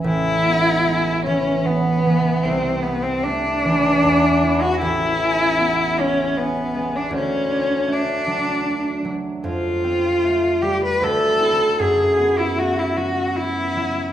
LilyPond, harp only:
\new Staff \with { instrumentName = "Harp" } { \clef bass \time 3/4 \key a \major \tempo 4 = 76 <a,, gis cis'>8 b8 gis8 e8 b8 e8 | c,8 c'8 a8 e8 e,8 <b e'>8 | a,,8 cis'8 b8 gis8 cis'8 gis8 | d,8 d'8 a8 fis8 d'8 fis8 |
f,8 c'8 a8 g8 d,8 <c' e'>8 | fis,8 b8 a8 fis8 b8 fis8 | }